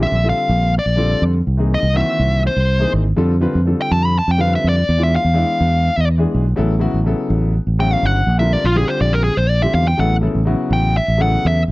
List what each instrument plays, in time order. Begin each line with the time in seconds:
0.00 grand piano D3 G3 C4 F4 G4, lead electric guitar E5
0.12 fingered electric bass A#1
0.23 grand piano D3 G3 C4 F4 A4
0.29 lead electric guitar F5
0.49 fingered electric bass A#1
0.79 lead electric guitar D5
0.86 fingered electric bass A#1
0.96 grand piano D3 G3 C4 F4 A4
1.22 fingered electric bass F2
1.47 fingered electric bass C2
1.57 grand piano E3 A#3 C4 D#4 G#4
1.74 lead electric guitar D#5
1.83 fingered electric bass C2
1.93 grand piano D#3 E3 A#3 C4 F#4, lead electric guitar E5
2.19 fingered electric bass C2
2.47 lead electric guitar C5
2.56 fingered electric bass C2
2.79 grand piano E3 A#3 C4 D#4 G#4
2.93 fingered electric bass G#1
3.16 fingered electric bass F2, grand piano D3 G3 C4 F4 A4
3.40 grand piano D3 G3 C4 F4 B4
3.55 fingered electric bass F2
3.65 grand piano D3 G3 C4 F4 A4
3.82 lead electric guitar G5
3.91 fingered electric bass F2, lead electric guitar A5
4.05 lead electric guitar B5
4.19 lead electric guitar A5
4.28 fingered electric bass F2, lead electric guitar G5
4.37 grand piano D3 G3 C4 F4 B4, lead electric guitar F5
4.55 lead electric guitar E5
4.64 fingered electric bass F2
4.69 lead electric guitar D5
4.89 fingered electric bass E2
4.97 grand piano E3 G#3 B3 D4 F4
5.03 lead electric guitar E5
5.16 lead electric guitar F5
5.25 fingered electric bass E2
5.33 grand piano E3 G#3 B3 D4 E4
5.61 fingered electric bass E2
5.97 fingered electric bass E2
6.18 grand piano E3 G#3 B3 D4 G#4
6.34 fingered electric bass B1
6.56 fingered electric bass A1, grand piano C#3 F#3 B3 E4 A4
6.79 grand piano C#3 F#3 B3 E4 F#4
6.94 fingered electric bass A1
7.04 grand piano C#3 F#3 B3 E4 A4
7.30 fingered electric bass A1
7.67 fingered electric bass A1
7.79 grand piano C#3 F#3 B3 E4 F#4, lead electric guitar G5
7.93 lead electric guitar F5
8.03 fingered electric bass G1, lead electric guitar F#5
8.27 fingered electric bass A#1
8.38 grand piano D3 G3 C4 F4 A#4, lead electric guitar E5
8.53 lead electric guitar D5
8.64 fingered electric bass A#1, lead electric guitar F4
8.75 grand piano D3 G3 C4 F4 G4, lead electric guitar G#4
8.88 lead electric guitar C5
9.01 fingered electric bass A#1, lead electric guitar D5
9.13 lead electric guitar A#4
9.24 lead electric guitar G#4
9.37 fingered electric bass A#1, lead electric guitar C5
9.49 lead electric guitar D5
9.61 grand piano D3 G3 C4 F4 G4, lead electric guitar E5
9.74 fingered electric bass E2, lead electric guitar F5
9.88 lead electric guitar G5
9.97 fingered electric bass A1, grand piano C#3 F#3 B3 E4 A4, lead electric guitar F#5
10.21 grand piano C#3 F#3 B3 E4 A4
10.35 fingered electric bass A1
10.45 grand piano C#3 F#3 B3 E4 F#4
10.70 fingered electric bass A1, lead electric guitar G5
10.97 lead electric guitar E5
11.08 fingered electric bass A1
11.18 grand piano C#3 F#3 B3 E4 A4
11.22 lead electric guitar F#5
11.45 fingered electric bass E2, lead electric guitar E5
11.68 fingered electric bass A1